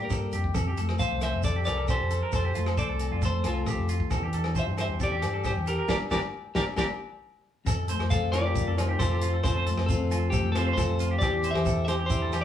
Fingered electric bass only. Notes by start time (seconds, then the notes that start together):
0.11 G2
0.33 F2
0.55 F2
0.78 F2
1.11 C2
1.34 F2
1.67 C2
2.00 F2
2.33 F2
2.55 F2
2.89 C2
3.11 F2
3.44 C2
3.78 F2
4.11 E2
4.33 E2
4.67 G2
4.88 E2
5.21 G2
5.56 E2
5.89 G1
6.11 G1
6.56 G1
6.77 G1
7.67 F2
8.00 F2
8.23 F2
8.67 F2
9.00 F2
9.44 F2
9.77 F2
9.99 F2
10.44 F2
10.77 F2
11.22 E2
11.55 E2
11.77 E2
12.22 E2